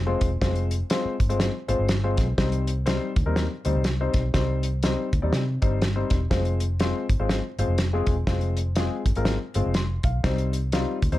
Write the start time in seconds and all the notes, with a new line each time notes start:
Already playing: F1
0.06 G#3 C4 F4 C5
0.21 E1, kick, closed hi-hat
0.41 F1 G#3 C4 F4 C5, kick, snare, closed hi-hat
0.56 closed hi-hat
0.71 closed hi-hat
0.90 G#3 C4 F4 C5, snare, closed hi-hat
1.05 muted fingered electric bass stroke
1.20 G1, kick, closed hi-hat
1.29 G#3 C4 F4 C5, closed hi-hat
1.40 snare, closed hi-hat
1.68 G#1 G#3 C4 F4 C5, closed hi-hat
1.79 G1
1.89 snare, closed hi-hat
2.03 G#3 C4 F4 C5
2.17 B1, kick, snare, closed hi-hat
2.38 C2 G3 C4 D#4 C5, kick, snare, closed hi-hat
2.52 closed hi-hat
2.67 closed hi-hat
2.86 G3 C4 D#4 C5, snare, closed hi-hat
3.16 D2, kick, closed hi-hat
3.26 D#2 G3 C4 D#4 A#4
3.36 snare, closed hi-hat
3.65 D2 G3 C4 D#4 C5, closed hi-hat
3.75 C2
3.84 snare, closed hi-hat
4.00 G3 C4 D#4 C5
4.14 B1, kick, snare, closed hi-hat
4.34 C2 G3 C4 D#4 C5, kick, snare, closed hi-hat
4.63 closed hi-hat
4.83 G3 C4 D#4 C5, snare, closed hi-hat
5.13 D2, kick, closed hi-hat
5.22 D#2 G3 C4 D#4 D5
5.33 C3, snare, closed hi-hat
5.62 G1 G3 C4 D#4 C5, kick, closed hi-hat
5.82 snare, closed hi-hat
5.96 G3 C4 D#4 C5
6.10 E1, kick, snare, closed hi-hat
6.30 F1 G#3 C4 F4 C5, kick, snare, closed hi-hat
6.45 closed hi-hat
6.60 closed hi-hat
6.80 G#3 C4 F4 C5, snare, closed hi-hat
7.10 G1, kick, closed hi-hat
7.19 G#1 G#3 C4 F4 C5
7.29 snare, closed hi-hat
7.59 G1 G#3 C4 F4 C5, closed hi-hat
7.68 F1
7.78 snare, closed hi-hat
7.93 G#3 C4 F4 G#4
8.07 E1, kick, closed hi-hat
8.27 F1 G#3 C4 F4 C5, kick, snare, closed hi-hat
8.41 closed hi-hat
8.57 closed hi-hat
8.76 G#3 C4 F4 G#4, snare, closed hi-hat
9.05 G1, kick, closed hi-hat
9.15 G#1 G#3 C4 F4 A#4, closed hi-hat
9.25 snare, closed hi-hat
9.54 G1 G#3 C4 F4 C5, closed hi-hat
9.66 F1
9.74 C6, snare, closed hi-hat
10.03 B1 F5, kick, closed hi-hat
10.23 C2 G3 C4 D#4 C5, kick, snare, closed hi-hat
10.38 closed hi-hat
10.53 closed hi-hat
10.72 G3 C4 D#4 F4, snare, closed hi-hat
11.02 D2, kick, closed hi-hat
11.12 D#2 G3 C4 D#4 C5, closed hi-hat